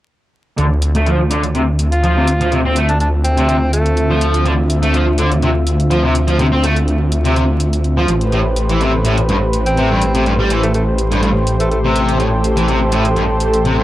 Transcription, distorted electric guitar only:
0.58 D3
0.95 A3
1.07 F3
1.30 D3
1.55 C3
2.03 F3
2.17 C3
2.41 F3
2.52 C3
2.65 C4
2.76 A3
3.37 C3
3.49 C3
4.10 F3
4.46 D3
4.83 A3
4.94 F3
5.18 D3
5.43 C3
5.91 F3
6.04 C3
6.28 F3
6.39 C3
6.52 C4
6.63 A3
7.24 C3
7.36 C3
7.97 F3
8.32 A2
8.70 E3
8.80 C3
9.04 A2
9.29 G2
9.77 C3
9.91 G2
10.15 C3
10.25 G2
10.39 G3
10.50 E3
11.11 G2
11.22 G2
11.84 C3
12.19 A2
12.57 E3
12.68 C3
12.92 A2
13.16 G2
13.65 C3
13.78 G2

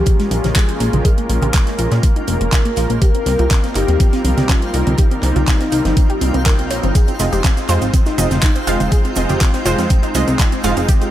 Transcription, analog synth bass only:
0.31 A#1
0.44 A#1
0.80 A#1
0.93 A#1
1.30 A#1
1.42 A#1
1.79 A#1
1.92 A#2
2.28 F1
2.41 F1
2.77 A#1
2.90 A#1
3.26 C2
3.39 C2
3.75 G1
3.88 D#2
4.25 C2
4.38 C2
4.74 C2
4.87 C2
5.23 C2
5.36 C2
5.72 C2
5.85 G1
6.21 C2
6.34 C2
6.71 A#1
6.84 G1
7.20 F1
7.33 F1
7.69 F2
7.82 G#1
8.18 F1
8.31 F1
8.67 F1
8.80 F1
9.17 F1
9.29 F1
9.66 F1
9.79 F2
10.15 C2
10.28 C2
10.64 F1
10.77 F1

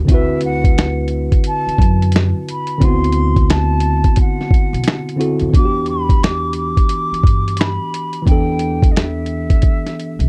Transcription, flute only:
0.11 E5
0.46 F#5
1.48 A5
2.51 B5
2.85 C6
3.52 A5
4.21 F#5
5.56 D6
5.90 B5
6.23 D6
6.57 D6
7.60 B5
8.28 G5
8.92 D#5
8.96 E5

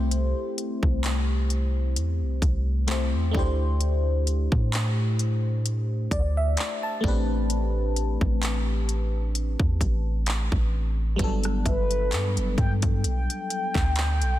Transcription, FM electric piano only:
Already playing: A3 C4 E4 G4 C5
2.87 A3 C4 E4 G4 C5
3.31 A3 D4 E4
3.37 G4 C5
6.12 D5
6.37 E5
6.83 A5
7.01 A3 B3 D4
7.06 C4 G4 B4
11.16 G3 B3 D4
11.22 F#3 A4

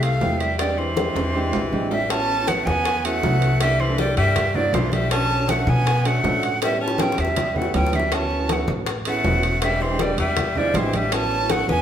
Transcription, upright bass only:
Already playing: C2
0.21 E2
1.15 E2
1.54 A#1
1.73 A1
2.66 E2
3.23 C2
4.17 G2
4.73 B1
5.67 B2
6.24 A2
7.18 E2
7.74 D2
8.68 A1
9.24 E1
10.18 E2
10.74 A1
11.68 E2

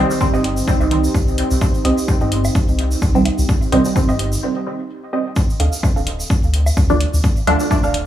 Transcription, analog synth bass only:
0.34 G1
0.81 C2
1.15 C2
1.51 C2
1.85 C2
2.21 G1
2.68 C2
3.02 C2
3.38 C2
3.72 C2
4.09 G1
5.60 D2
5.96 D1
6.43 D2
6.77 D2
7.13 D2
7.47 D2
7.84 D1

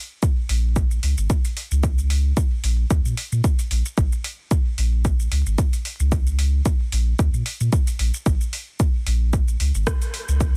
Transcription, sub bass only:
0.49 A#1
1.03 C#2
1.18 G#1
1.71 C#2
2.64 A#1
2.90 D#2
3.05 A#2
3.32 A#2
3.71 A#1
3.98 A#1
4.78 A#1
5.31 C#2
5.46 G#1
6.00 C#2
6.92 A#1
7.19 D#2
7.34 A#2
7.61 A#2
7.99 A#1
8.26 A#1
9.07 A#1
9.60 C#2
9.75 G#1
10.28 C#2

